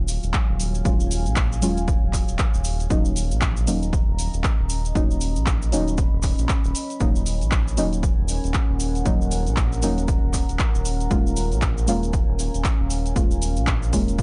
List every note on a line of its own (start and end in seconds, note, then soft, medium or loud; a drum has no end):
0.00 0.19 D#1 medium
0.00 0.83 F#3 medium
0.00 2.86 F#3 medium
0.00 0.83 G#3 medium
0.00 0.83 C#4 medium
0.00 0.83 F4 medium
0.00 2.86 C#5 medium
0.00 2.86 F5 medium
0.00 2.86 G#5 medium
0.08 open hi-hat loud
0.08 cabasa medium
0.23 0.32 D#1 medium
0.23 closed hi-hat medium
0.23 cabasa soft
0.33 kick loud
0.33 clap loud
0.33 closed hi-hat medium
0.33 cabasa soft
0.49 0.83 D#1 medium
0.60 open hi-hat loud
0.60 cabasa medium
0.75 closed hi-hat medium
0.75 cabasa soft
0.85 1.28 D#1 medium
0.85 1.59 F#3 medium
0.85 1.60 G#3 medium
0.85 1.60 C#4 medium
0.85 1.60 F4 loud
0.85 kick loud
0.85 closed hi-hat medium
0.85 cabasa soft
1.00 cabasa soft
1.11 open hi-hat loud
1.11 cabasa loud
1.26 1.64 A#1 medium
1.26 closed hi-hat medium
1.26 cabasa soft
1.36 kick loud
1.36 clap loud
1.36 closed hi-hat medium
1.36 cabasa medium
1.52 cabasa soft
1.62 1.99 D#1 medium
1.62 2.88 F#3 medium
1.62 2.88 G#3 medium
1.62 2.88 C#4 medium
1.62 2.88 F4 medium
1.62 open hi-hat loud
1.62 cabasa medium
1.77 closed hi-hat soft
1.77 cabasa soft
1.88 kick loud
1.88 closed hi-hat medium
1.88 cabasa medium
2.03 2.24 D#1 medium
2.13 kick medium
2.13 clap soft
2.13 open hi-hat loud
2.13 cabasa loud
2.28 2.37 D#1 medium
2.28 closed hi-hat soft
2.28 cabasa soft
2.39 kick loud
2.39 clap loud
2.39 closed hi-hat medium
2.39 cabasa soft
2.54 2.88 D#1 medium
2.54 cabasa soft
2.64 open hi-hat loud
2.64 cabasa medium
2.80 closed hi-hat soft
2.80 cabasa soft
2.90 3.33 D#1 medium
2.90 3.65 F#3 medium
2.90 3.65 A#3 medium
2.90 11.07 C#4 medium
2.90 3.65 C#4 medium
2.90 3.65 D#4 medium
2.90 6.97 D#5 medium
2.90 4.93 A#5 medium
2.90 kick loud
2.90 closed hi-hat medium
2.90 cabasa medium
3.05 cabasa soft
3.16 open hi-hat loud
3.16 cabasa medium
3.31 3.69 A#1 medium
3.31 closed hi-hat soft
3.31 cabasa soft
3.41 kick loud
3.41 clap loud
3.41 closed hi-hat medium
3.41 cabasa medium
3.57 cabasa soft
3.67 4.04 D#1 medium
3.67 4.93 F#3 medium
3.67 4.93 A#3 medium
3.67 4.93 C#4 medium
3.67 4.93 D#4 medium
3.67 open hi-hat loud
3.67 cabasa loud
3.83 closed hi-hat soft
3.83 cabasa soft
3.93 kick loud
3.93 closed hi-hat medium
3.93 cabasa medium
4.08 4.29 D#1 medium
4.19 open hi-hat loud
4.19 cabasa medium
4.34 4.42 D#1 medium
4.34 closed hi-hat soft
4.34 cabasa soft
4.44 kick loud
4.44 clap loud
4.44 closed hi-hat medium
4.44 cabasa medium
4.59 4.93 D#1 medium
4.69 open hi-hat loud
4.69 cabasa medium
4.85 closed hi-hat soft
4.85 cabasa soft
4.95 5.38 D#1 medium
4.95 5.70 F#3 medium
4.95 5.70 A#3 medium
4.95 5.70 C#4 medium
4.95 5.70 D#4 loud
4.95 6.98 B5 medium
4.95 kick loud
4.95 closed hi-hat medium
4.95 cabasa medium
5.11 cabasa soft
5.21 open hi-hat loud
5.21 cabasa medium
5.36 5.74 A#1 medium
5.36 closed hi-hat soft
5.36 cabasa soft
5.46 kick loud
5.46 clap loud
5.46 closed hi-hat medium
5.46 cabasa medium
5.62 cabasa soft
5.72 6.09 D#1 medium
5.72 6.98 F#3 medium
5.72 6.98 A#3 medium
5.72 6.98 C#4 medium
5.72 6.98 D#4 medium
5.72 open hi-hat loud
5.72 cabasa medium
5.88 closed hi-hat soft
5.88 cabasa soft
5.98 kick loud
5.98 closed hi-hat medium
5.98 cabasa soft
6.13 6.34 D#1 medium
6.23 kick medium
6.23 clap soft
6.23 open hi-hat loud
6.23 cabasa medium
6.38 6.48 A#1 medium
6.38 closed hi-hat soft
6.38 cabasa soft
6.49 kick loud
6.49 clap loud
6.49 closed hi-hat medium
6.49 cabasa medium
6.64 6.73 D#1 medium
6.64 cabasa soft
6.75 open hi-hat loud
6.75 cabasa loud
6.90 closed hi-hat soft
6.90 cabasa soft
7.00 7.43 D#1 medium
7.00 7.75 F#3 medium
7.00 7.75 A#3 medium
7.00 7.75 C#4 medium
7.00 7.75 D#4 loud
7.00 14.23 A#4 medium
7.00 11.07 F#5 medium
7.00 9.04 G#5 medium
7.00 kick loud
7.00 closed hi-hat medium
7.00 cabasa medium
7.16 cabasa soft
7.26 open hi-hat loud
7.26 cabasa medium
7.41 7.79 A#1 medium
7.41 closed hi-hat soft
7.41 cabasa soft
7.51 kick loud
7.51 clap loud
7.51 closed hi-hat medium
7.51 cabasa soft
7.68 cabasa soft
7.77 8.15 D#1 medium
7.77 9.03 F#3 medium
7.77 9.03 A#3 medium
7.77 9.03 C#4 medium
7.77 9.03 D#4 medium
7.77 open hi-hat loud
7.77 cabasa medium
7.93 closed hi-hat soft
7.93 cabasa soft
8.03 kick loud
8.03 closed hi-hat medium
8.03 cabasa medium
8.19 8.39 D#1 medium
8.28 open hi-hat loud
8.28 cabasa medium
8.44 8.53 D#1 medium
8.44 closed hi-hat soft
8.44 cabasa soft
8.54 kick loud
8.54 clap loud
8.54 closed hi-hat medium
8.54 cabasa medium
8.70 9.03 D#1 medium
8.80 open hi-hat loud
8.80 cabasa medium
8.95 closed hi-hat medium
8.95 cabasa soft
9.05 9.48 D#1 loud
9.05 9.80 F#3 medium
9.05 9.80 A#3 medium
9.05 9.80 C#4 medium
9.05 9.80 D#4 loud
9.05 11.09 A#5 medium
9.05 kick loud
9.05 closed hi-hat medium
9.05 cabasa medium
9.22 cabasa soft
9.31 open hi-hat loud
9.31 cabasa medium
9.47 9.84 A#1 medium
9.47 closed hi-hat soft
9.47 cabasa soft
9.56 kick loud
9.56 clap loud
9.56 closed hi-hat medium
9.56 cabasa soft
9.73 cabasa soft
9.82 10.20 D#1 medium
9.82 11.08 F#3 medium
9.82 11.08 A#3 medium
9.82 11.08 C#4 medium
9.82 11.09 D#4 medium
9.82 open hi-hat loud
9.82 cabasa medium
9.98 closed hi-hat soft
9.98 cabasa soft
10.08 kick loud
10.08 closed hi-hat medium
10.08 cabasa medium
10.24 10.44 D#1 medium
10.33 kick medium
10.33 clap soft
10.33 open hi-hat loud
10.33 cabasa medium
10.49 10.58 D#1 medium
10.49 closed hi-hat medium
10.49 cabasa soft
10.59 kick loud
10.59 clap loud
10.59 closed hi-hat medium
10.59 cabasa soft
10.75 11.08 D#1 medium
10.75 cabasa soft
10.85 open hi-hat loud
10.85 cabasa medium
11.00 closed hi-hat soft
11.00 cabasa soft
11.10 11.53 D#1 medium
11.10 11.85 G#3 medium
11.10 11.85 A#3 medium
11.10 11.85 C#4 medium
11.10 14.23 C#4 medium
11.10 11.86 F4 medium
11.10 14.23 F5 medium
11.10 13.14 G#5 medium
11.10 kick loud
11.10 closed hi-hat medium
11.10 cabasa soft
11.27 cabasa soft
11.36 open hi-hat medium
11.36 cabasa medium
11.52 11.89 A#1 medium
11.52 closed hi-hat soft
11.52 cabasa soft
11.62 kick loud
11.62 clap loud
11.62 closed hi-hat medium
11.62 cabasa soft
11.78 cabasa soft
11.87 12.25 D#1 medium
11.87 13.13 G#3 medium
11.87 13.13 A#3 medium
11.87 13.14 C#4 medium
11.87 13.14 F4 medium
11.87 open hi-hat loud
11.87 cabasa medium
12.03 closed hi-hat medium
12.03 cabasa soft
12.13 kick loud
12.13 closed hi-hat medium
12.13 cabasa soft
12.29 12.50 D#1 medium
12.39 open hi-hat medium
12.39 cabasa medium
12.54 12.63 D#1 medium
12.54 closed hi-hat soft
12.54 cabasa soft
12.64 kick loud
12.64 clap loud
12.64 closed hi-hat medium
12.64 cabasa soft
12.80 13.13 D#1 medium
12.90 open hi-hat medium
12.90 cabasa medium
13.06 closed hi-hat medium
13.06 cabasa soft
13.15 13.58 D#1 medium
13.15 13.90 G#3 medium
13.15 13.90 A#3 medium
13.15 13.91 C#4 medium
13.15 13.91 F4 loud
13.15 14.23 A#5 medium
13.15 kick loud
13.15 closed hi-hat medium
13.15 cabasa soft
13.31 cabasa soft
13.42 open hi-hat loud
13.42 cabasa medium
13.56 13.94 A#1 medium
13.56 closed hi-hat medium
13.56 cabasa soft
13.67 kick loud
13.67 clap loud
13.67 closed hi-hat medium
13.67 cabasa medium
13.83 cabasa soft
13.93 14.23 D#1 medium
13.93 14.23 G#3 medium
13.93 14.23 A#3 medium
13.93 14.23 C#4 medium
13.93 14.23 F4 medium
13.93 kick medium
13.93 open hi-hat medium
13.93 cabasa medium
14.08 closed hi-hat medium
14.08 cabasa soft
14.19 kick loud
14.19 closed hi-hat medium
14.19 cabasa soft